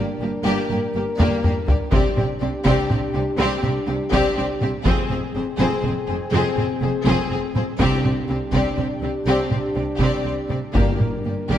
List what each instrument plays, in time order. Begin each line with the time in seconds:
Already playing: french horn section D4 A#4
0.20 double bass section G1, cello section G2, viola section A#3, violin section G4 D5
0.44 double bass section G1, cello section G2, viola section A#3, violin section G4 D5
0.70 double bass section G1, cello section G2, viola section A#3, violin section G4 D5, taiko mid
0.94 double bass section G1, cello section G2, viola section A#3, violin section G4 D5
1.18 double bass section G1, cello section G2, viola section A#3, violin section G4 D5, taiko low-mid
1.43 double bass section G1, cello section G2, viola section A#3, violin section G4 D5, taiko low-mid
1.67 double bass section G1, cello section G2, viola section A#3, violin section G4 D5, taiko low
1.91 double bass section C2, cello section C3, viola section C4, french horn section D4 G4, violin section G4 D5, taiko
2.17 double bass section C2, cello section C3, viola section C4, violin section G4 D5, taiko mid
2.40 double bass section C2, cello section C3, viola section C4, violin section G4 D5
2.65 double bass section C2, cello section C3, viola section C4, violin section G4 D5, taiko
2.90 double bass section C2, cello section C3, viola section C4, violin section G4 D5, taiko mid
3.14 double bass section C2, cello section C3, viola section C4, violin section G4 D5
3.37 double bass section C2, cello section C3, viola section C4, violin section G4 D5
3.62 double bass section C2, cello section C3, viola section C4, violin section G4 D5, taiko mid
3.87 double bass section C2, cello section C3, viola section C4, violin section G4 D5
4.12 double bass section C2, cello section C3, viola section C4, violin section G4 D5, taiko
4.36 double bass section C2, cello section C3, viola section C4, violin section G4 D5
4.61 double bass section C2, cello section C3, viola section C4, violin section G4 D5, taiko mid
4.84 double bass section F1, cello section F2, french horn section C4 G#4, viola section C4, violin section G#4 C5, taiko
5.10 double bass section F1, cello section F2, viola section C4, violin section G#4 C5, taiko mid
5.34 double bass section F1, cello section F2, viola section C4, violin section G#4 C5
5.58 double bass section F1, cello section F2, viola section C4, violin section G#4 C5, taiko
5.82 double bass section F1, cello section F2, viola section C4, violin section G#4 C5, taiko mid
6.08 double bass section F1, cello section F2, viola section C4, violin section G#4 C5
6.32 double bass section F1, cello section F2, viola section C4, violin section G#4 C5
6.57 double bass section F1, cello section F2, viola section C4, violin section G#4 C5, taiko mid
6.81 double bass section F1, cello section F2, viola section C4, violin section G#4 C5
7.05 double bass section F1, cello section F2, viola section C4, violin section G#4 C5, taiko
7.29 double bass section F1, cello section F2, viola section C4, violin section G#4 C5
7.55 double bass section F1, cello section F2, viola section C4, violin section G#4 C5, taiko mid
7.78 double bass section C2, cello section C3, timpani C3, viola section C4, french horn section D4 G4, violin section G4 D5, taiko
8.03 double bass section C2, cello section C3, viola section C4, violin section G4 D5, taiko mid
8.28 double bass section C2, cello section C3, viola section C4, violin section G4 D5
8.52 double bass section C2, cello section C3, viola section C4, violin section G4 D5, taiko
8.76 double bass section C2, cello section C3, viola section C4, violin section G4 D5, taiko mid
9.01 double bass section C2, cello section C3, viola section C4, violin section G4 D5
9.26 double bass section C2, cello section C3, viola section C4, violin section G4 D5
9.50 double bass section C2, cello section C3, viola section C4, violin section G4 D5, taiko mid
9.75 double bass section C2, cello section C3, viola section C4, violin section G4 D5
9.99 double bass section C2, cello section C3, viola section C4, violin section G4 D5, taiko
10.23 double bass section C2, cello section C3, viola section C4, violin section G4 D5
10.49 double bass section C2, cello section C3, viola section C4, violin section G4 D5, taiko mid
10.74 double bass section G1, cello section G2, timpani G2, viola section A#3, violin section G4 D5, french horn section A#4, taiko, reverse cymbal
10.97 double bass section G1, cello section G2, viola section A#3, violin section G4, taiko mid
11.02 violin section D5
11.24 double bass section G1, cello section G2, viola section A#3, violin section G4 D5
11.50 double bass section G1, cello section G2, viola section A#3, violin section G4 D5, taiko